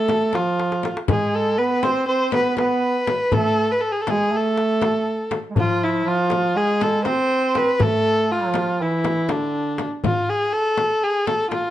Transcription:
Already playing: A3 A4
0.08 darbuka tek, frame drum
0.33 F3 F4, darbuka tek, frame drum
0.60 darbuka tek
0.72 darbuka ka
0.83 darbuka tek, frame drum
0.97 darbuka ka
1.08 G#3 G#4, frame drum, darbuka dum
1.35 A4
1.58 B3 B4
1.83 C4 C5, darbuka tek, frame drum
2.07 C4 C5, darbuka ka
2.32 B3 B4, darbuka tek, frame drum
2.57 B3 B4, darbuka tek, frame drum
3.07 darbuka tek, frame drum
3.32 A3 A4, darbuka dum, frame drum
3.71 B4
3.80 A4
3.92 G#4
4.01 A4
4.07 G#3 G#4, darbuka tek, frame drum
4.31 A3, darbuka ka
4.36 A4
4.57 darbuka tek
4.82 darbuka tek, frame drum
5.31 darbuka tek, frame drum
5.50 G#3
5.55 F3, darbuka dum, frame drum
5.60 F4
5.83 E4
6.05 F3 F4
6.30 darbuka tek, frame drum
6.55 G#3 G#4, darbuka ka
6.81 A4, darbuka tek, frame drum
7.05 C4 C5, darbuka tek, frame drum
7.55 B4, darbuka tek, frame drum
7.80 A3 A4, frame drum, darbuka dum
8.30 F3 F4, darbuka ka
8.54 darbuka tek, frame drum
8.80 E3 E4, darbuka ka
9.04 darbuka tek, frame drum
9.29 D3 D4, darbuka tek, frame drum
9.78 darbuka tek, frame drum
10.04 F4, darbuka dum, frame drum
10.29 G#4
10.52 A4, darbuka ka
10.77 darbuka tek, frame drum
11.03 G#4
11.27 A4, darbuka tek, frame drum
11.51 F4, darbuka tek, frame drum

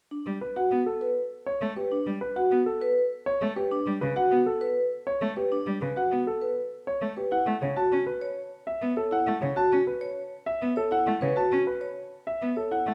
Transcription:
0.11 D4
0.26 G3
0.41 B4
0.56 F#4 F#5
0.71 B3
0.86 A4
1.01 B4
1.46 C#5
1.61 A3
1.76 G4 B4
1.91 D4
2.06 G3
2.21 B4
2.36 F#4 F#5
2.51 B3
2.66 A4
2.81 B4
3.26 C#5
3.41 A3
3.56 G4 B4
3.71 D4
3.86 G3
4.01 C#3 B4
4.16 F#4 F#5
4.31 B3
4.46 A4
4.61 B4
5.07 C#5
5.21 A3
5.37 G4 B4
5.52 D4
5.66 G3
5.81 C#3 B4
5.96 F#4 F#5
6.11 B3
6.27 A4
6.42 B4
6.87 C#5
7.02 A3
7.17 G4 B4
7.31 E4 F#5
7.46 A3
7.62 C#3 C#5
7.76 F#4 A5
7.92 C#4
8.07 B4
8.21 C#5
8.67 E5
8.82 B3
8.96 A4 C#5
9.11 E4 F#5
9.27 A3
9.42 C#3 C#5
9.56 F#4 A5
9.72 C#4
9.87 B4
10.01 C#5
10.46 E5
10.62 B3
10.76 A4 C#5
10.91 E4 F#5
11.06 A3
11.21 C#3 B4 C#5
11.36 F#4 A5
11.52 C#4
11.67 B4
11.81 C#5
12.27 E5
12.42 B3
12.56 A4 C#5
12.71 E4 F#5
12.86 A3

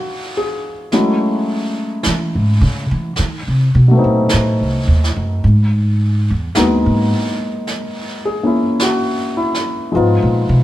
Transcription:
Already playing: F#3 A#3 B3 C#4 D#4 F4 F#4
0.37 G#4
0.92 F#3 G#3 A3 C#4 E4, brush sweep, snare
2.03 E3, brush sweep, snare
2.35 G#2
2.61 C#3
2.91 E3
3.16 D#3, brush sweep, snare
3.47 C3
3.75 B2
3.88 F#3 A3
3.94 B3 C4
3.99 D#4
4.04 A#2
4.29 brush sweep, snare
4.33 A2
4.60 C2
4.87 D#2
5.04 snare
5.16 F#2
5.41 G#2, brush sweep
6.30 E2
6.55 D#2 F#3 G#3 A#3 B3 D#4, brush sweep, snare
6.86 G#2
7.67 brush sweep, snare
8.25 G#4
8.43 A#3 C#4 E4
8.80 F#4, brush sweep, snare
9.37 E4
9.54 snare
9.92 G#2 F3 G#3 B3 D#4, brush sweep
9.96 F4
10.22 A#2
10.49 B2

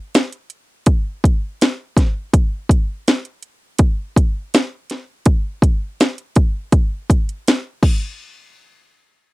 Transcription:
0.15 snare, closed hi-hat
0.32 closed hi-hat
0.50 closed hi-hat
0.86 kick, closed hi-hat
1.24 kick, closed hi-hat
1.61 snare, closed hi-hat
1.97 kick, snare, closed hi-hat
2.33 kick, closed hi-hat
2.69 kick, closed hi-hat
3.08 snare, closed hi-hat
3.25 closed hi-hat
3.43 closed hi-hat
3.79 kick, closed hi-hat
4.16 kick, closed hi-hat
4.54 snare, closed hi-hat
4.90 snare, closed hi-hat
5.26 kick, closed hi-hat
5.62 kick, closed hi-hat
6.00 snare, closed hi-hat
6.18 closed hi-hat
6.36 kick, closed hi-hat
6.72 kick, closed hi-hat
7.10 kick, closed hi-hat
7.29 closed hi-hat
7.48 snare, closed hi-hat
7.83 kick, crash

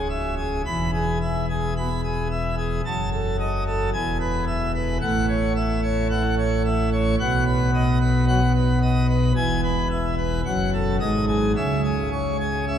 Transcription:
Already playing: C#1 C#2
0.10 E5
0.38 G#4
0.66 E1 E2 B5
0.94 G#4
1.22 E5
1.50 G#4
1.77 B2 B5
2.04 G#4
2.31 E5
2.58 G#4
2.86 F#1 F#2 A5
3.12 A4
3.40 D#5
3.67 A4
3.93 E1 E2 G#5
4.21 B4
4.47 E5
4.75 B4
5.02 A1 A2 F#5
5.29 C#5
5.56 E5
5.83 C#5
6.10 E3 F#5
6.38 C#5
6.65 E5
6.92 C#5
7.20 B1 B2 F#5
7.47 B4
7.74 D#5
8.01 B4
8.28 F#3 F#5
8.55 B4
8.83 D#5
9.09 B4
9.36 E1 E2 G#5
9.64 B4
9.91 E5
10.18 B4
10.45 F#1 F#2 F#5
10.73 A4
11.00 G#1 G#2 D#5
11.28 G#4
11.56 C#2 C#3 E5
11.84 G#4
12.12 C#5
12.40 G#4
12.68 C#4 E5

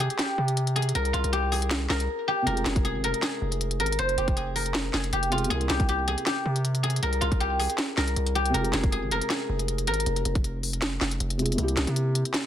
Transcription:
Already playing: F4 A#4
0.00 G#4, closed hi-hat
0.10 closed hi-hat
0.19 G4, snare, clap, closed hi-hat
0.38 C3
0.48 closed hi-hat
0.57 closed hi-hat
0.67 closed hi-hat
0.76 G#4, closed hi-hat
0.82 closed hi-hat
0.89 closed hi-hat
0.95 C2 A#4, closed hi-hat
1.05 closed hi-hat
1.13 C2 F4, closed hi-hat
1.24 C2, closed hi-hat
1.33 G4, closed hi-hat
1.52 G#4, open hi-hat
1.62 closed hi-hat
1.71 snare, clap, closed hi-hat
1.90 C2 A#4, snare, clap
2.00 closed hi-hat
2.28 G4
2.42 C3 G#3
2.47 F1 F4 A#4, closed hi-hat
2.52 G#4
2.57 closed hi-hat
2.66 F1 G#4, snare, clap, closed hi-hat
2.76 kick, closed hi-hat
2.85 G#4, closed hi-hat
2.95 G#1
3.04 F1 A#4, closed hi-hat
3.14 closed hi-hat
3.22 G#4, snare, clap, closed hi-hat
3.42 F1
3.52 closed hi-hat
3.61 closed hi-hat
3.71 closed hi-hat
3.80 G#1 A#4, closed hi-hat
3.86 closed hi-hat
3.92 closed hi-hat
3.99 F1 C5, closed hi-hat
4.09 closed hi-hat
4.18 F1 G4, closed hi-hat
4.28 kick, closed hi-hat
4.37 G#4, closed hi-hat
4.56 A#4, open hi-hat
4.66 closed hi-hat
4.75 snare, clap, closed hi-hat
4.94 F1 G#4, snare, clap
5.04 closed hi-hat
5.13 F1 G4, closed hi-hat
5.23 closed hi-hat
5.30 C3 G#3 F4, closed hi-hat
5.35 G#4, closed hi-hat
5.44 C3, closed hi-hat
5.49 C2 A#3 E4 G#4, closed hi-hat
5.55 A#4
5.61 closed hi-hat
5.70 C2 G4, snare, clap, closed hi-hat
5.80 kick, closed hi-hat
5.89 G4, closed hi-hat
6.08 G#4, closed hi-hat
6.18 closed hi-hat
6.26 G4, snare, clap, closed hi-hat
6.46 C3
6.56 closed hi-hat
6.65 closed hi-hat
6.75 closed hi-hat
6.83 G#4, closed hi-hat
6.90 closed hi-hat
6.96 closed hi-hat
7.03 C2 A#4, closed hi-hat
7.13 closed hi-hat
7.21 C2 F4, closed hi-hat
7.32 kick, closed hi-hat
7.40 G4, closed hi-hat
7.59 G#4, open hi-hat
7.70 closed hi-hat
7.78 snare, clap, closed hi-hat
7.97 C2 A#4, snare, clap
8.08 closed hi-hat
8.16 C2, closed hi-hat
8.27 closed hi-hat
8.35 G4, closed hi-hat
8.46 closed hi-hat
8.50 C3 G#3
8.54 F1 F4 A#4, closed hi-hat
8.60 G#4
8.65 closed hi-hat
8.73 F1 G#4, snare, clap, closed hi-hat
8.84 kick, closed hi-hat
8.92 G#4, closed hi-hat
9.03 G#1
9.11 F1 A#4, closed hi-hat
9.21 closed hi-hat
9.30 G#4, snare, clap, closed hi-hat
9.49 F1
9.59 closed hi-hat
9.68 closed hi-hat
9.78 closed hi-hat
9.87 G#1 A#4, closed hi-hat
9.94 closed hi-hat
10.00 closed hi-hat
10.06 F1, closed hi-hat
10.16 closed hi-hat
10.25 F1, closed hi-hat
10.35 kick, closed hi-hat
10.44 closed hi-hat
10.63 open hi-hat
10.73 closed hi-hat
10.82 snare, clap, closed hi-hat
11.01 F1, snare, clap
11.11 closed hi-hat
11.20 F1, closed hi-hat
11.30 closed hi-hat
11.37 C3 G#3 F4, closed hi-hat
11.42 G#4, closed hi-hat
11.52 C3, closed hi-hat
11.57 C2 A#3 E4, closed hi-hat
11.63 G4
11.68 closed hi-hat
11.77 C2, snare, clap, closed hi-hat
11.87 C3, closed hi-hat
11.96 closed hi-hat
12.15 closed hi-hat
12.25 closed hi-hat
12.34 snare, clap, closed hi-hat

